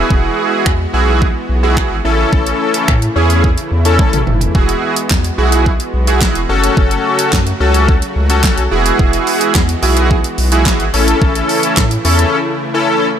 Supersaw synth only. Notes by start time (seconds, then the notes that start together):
Already playing: E3 G#3 B3 F#4
2.05 C#3 A3 E4
4.55 G#3 B3 F#4
6.49 C#3 F#3 A3
8.72 E3 G#3 B3
10.94 C#3 A3 E4